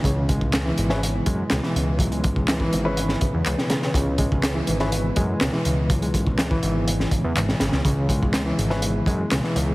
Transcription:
<<
  \new Staff \with { instrumentName = "Analog synth pad" } { \time 4/4 \key cis \minor \tempo 4 = 123 << { b'1~ | b'1~ | b'1~ | b'1 |
gis'1 | } \\ { <b e'>1~ | <b e'>1~ | <b e'>1~ | <b e'>1~ |
<b e'>1 | } >> }
  \new Staff \with { instrumentName = "Grand piano" } { \time 4/4 \key cis \minor r4. r16 <cis' e' gis' b'>16 r2 | r4. r16 <cis' e' gis' b'>16 r2 | r4. r16 <cis' e' gis' b'>16 r2 | r1 |
r4. r16 <cis' e' gis' b'>16 r2 | }
  \new Staff \with { instrumentName = "Reed electric piano" } { \clef bass \time 4/4 \key cis \minor cis8 gis16 r8 e4 r16 gis16 r16 b,16 e8. | fis16 gis16 r8 e16 e16 cis16 r8. cis16 e16 b16 b,16 cis16 r16 | cis8 gis16 r8 e4 r16 gis16 r16 b,16 e8. | fis16 gis16 r8 e16 e16 cis16 r8. cis16 e16 b16 b,16 cis16 r16 |
cis8 gis16 r8 e4 r16 gis16 r16 b,16 e8. | }
  \new Staff \with { instrumentName = "Analog synth bass" } { \clef bass \time 4/4 \key cis \minor cis,4. gis,,4 fis,16 r16 cis,16 r16 cis,8~ | cis,4. gis,,4 r16 e,16 cis,16 r8. | cis,4. gis,,4 fis,16 r16 cis,16 r16 cis,8~ | cis,4. gis,,4 r16 e,16 gis,,16 r16 gis,,16 cis,16 |
cis,4. gis,,4 fis,16 r16 cis,16 r16 cis,8 | }
  \new DrumStaff \with { instrumentName = "Drums" } \drummode { \time 4/4 <hh bd>8 <hh bd>16 bd16 <hc hh sn>8 hh16 sn16 hh8 <hh bd>8 <hc hh sn>16 sn16 hh8 | <hh bd>16 hh16 <hh bd>16 bd16 <hc hh sn>16 bd16 hh8 hh16 sn16 <hh bd>8 <hc hh>16 sn16 <hh sn>16 sn16 | <hh bd>8 <hh bd>16 bd16 <hc hh sn>8 hh16 sn16 hh8 <hh bd>8 <hc hh sn>16 sn16 hh8 | <hh bd>16 hh16 <hh bd>16 bd16 <hc hh sn>16 bd16 hh8 hh16 sn16 <hh bd>8 <hc hh>16 sn16 <hh sn>16 sn16 |
<hh bd>8 <hh bd>16 bd16 <hc hh sn>8 hh16 sn16 hh8 <hh bd>8 <hc hh sn>16 sn16 hh8 | }
>>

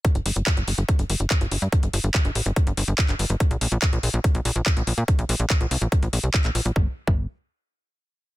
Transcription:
<<
  \new Staff \with { instrumentName = "Analog synth bass" } { \clef bass \time 4/4 \key g \minor \tempo 4 = 143 r16 g,,16 g,,16 g,,16 r16 g,,16 g,,16 g,,16 r16 g,,16 g,,16 g,,16 r16 g,,16 g,,16 g,16 | r16 g,,16 g,,16 g,,16 r16 g,,16 a,,16 g,,16 r16 g,,16 g,,16 g,,16 r16 g,,16 g,,16 g,,16 | r16 bes,,16 bes,,16 bes,,16 r16 bes,,16 bes,,16 bes,,16 r16 bes,,16 bes,,16 bes,,16 r16 bes,,16 bes,,16 bes,16 | r16 bes,,16 bes,,16 bes,,16 r16 bes,,16 c,16 bes,,16 r16 bes,,16 bes,,16 c,16 r16 bes,,16 bes,,16 bes,,16 |
g,,16 r8 g,,8 r2 r8. | }
  \new DrumStaff \with { instrumentName = "Drums" } \drummode { \time 4/4 <hh bd>16 hh16 hho16 hh16 <hc hh bd>16 hh16 hho16 hh16 <hh bd>16 hh16 hho16 hh16 <hc hh bd>16 hh16 hho16 hh16 | <hh bd>16 hh16 hho16 hh16 <hc hh bd>16 hh16 hho16 hh16 <hh bd>16 hh16 hho16 hh16 <hc hh bd>16 <hc hh>16 hho16 hh16 | <hh bd>16 hh16 hho16 hh16 <hc hh bd>16 hh16 hho16 hh16 <hh bd>16 hh16 hho16 hh16 <hc hh bd>16 hh16 hho16 hh16 | <hh bd>16 hh16 hho16 hh16 <hc hh bd>16 hh16 hho16 hh16 <hh bd>16 hh16 hho16 hh16 <hc hh bd>16 <hc hh>16 hho16 hh16 |
bd8. bd16 r4 r4 r4 | }
>>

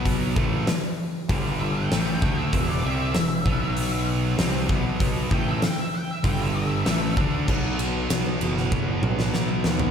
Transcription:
<<
  \new Staff \with { instrumentName = "Lead electric guitar" } { \time 4/4 \key b \phrygian \tempo 4 = 97 r2 r8 e''16 g''4 e''16~ | e''16 d''16 e''2 r4. | r8 g''16 e''16 g''16 e''16 g''16 e''16 g''16 e''16 e''4 r8 | r2. r8 b8 | }
  \new Staff \with { instrumentName = "Distorted electric guitar" } { \clef bass \time 4/4 \key b \phrygian <b, fis b>8 <a, e a>8 r4 <g, d g>4 <a, e a>8 <d a d'>8 | <e, b, e>8 <c g c'>8 <e, b,>8 <b, fis b>4. <c g c'>8 <b, fis b>8~ | <b, fis b>8 <a, e a>8 r4 <g, d g>4 <a, e a>8 <d a d'>8 | <b, fis b>2 <b, fis b>2 | }
  \new Staff \with { instrumentName = "Distorted electric guitar" } { \clef bass \time 4/4 \key b \phrygian <b, fis b>8 <a, e a>8 r4 <g, d g>4 <a, e a>8 <d a d'>8 | <e, b, e>8 <c g c'>8 <e, b,>8 <b, fis b>4. <c g c'>8 <b, fis b>8~ | <b, fis b>8 <a, e a>8 r4 <g, d g>4 <a, e a>8 <d a d'>8 | <b, fis b>1 | }
  \new Staff \with { instrumentName = "Picked electric bass" } { \clef bass \time 4/4 \key b \phrygian b,,8 a,,8 r4 g,,4 a,,8 d,8 | e,,8 c,8 e,,8 b,,4. c,8 b,,8~ | b,,8 a,,8 r4 g,,4 a,,8 d,8 | b,,4 b,,8 fis,,8 fis,,8 b,,8 b,,8 dis,8 | }
  \new DrumStaff \with { instrumentName = "Drums" } \drummode { \time 4/4 <hho bd>8 bd8 <hho sn>4 <hho bd>4 <hho sn>8 bd8 | <hho bd>4 <hho sn>8 bd8 hho4 <hho sn>8 bd8 | <hho bd>8 bd8 <hho sn>4 <hho bd>4 <hho sn>8 bd8 | <cymc bd>8 cymr8 <cymr sn>8 cymr16 sn16 bd8 toml16 sn16 sn8 sn16 tomfh16 | }
>>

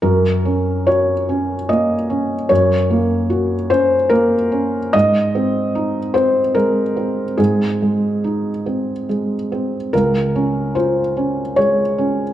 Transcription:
\new Staff \with { instrumentName = "Felt piano" } { \time 3/4 \key ges \lydian \tempo 4 = 73 << { bes'4 des''4 ees''4 | des''4. c''8 bes'4 | ees''4. c''8 bes'4 | aes'2 r4 |
bes'4 c''4 des''4 | } \\ { ges,8 des'8 ges'8 des'8 bes8 des'8 | ges,8 bes8 ges'8 des'8 bes8 des'8 | aes,8 c'8 ees'8 c'8 aes8 c'8 | aes,8 aes8 ees'8 c'8 aes8 c'8 |
des,8 des'8 f'8 des'8 aes8 des'8 | } >> }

